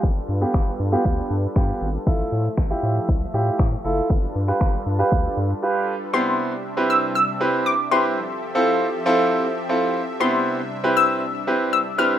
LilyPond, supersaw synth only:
\new Staff \with { instrumentName = "Supersaw synth" } { \time 4/4 \key c \major \tempo 4 = 118 <g d' f' a' b'>1 | <f a>1 | <g d' f' a' b'>1 | <c g d' e''>1 |
<f c' g' a'>1 | <c g d'>1 | }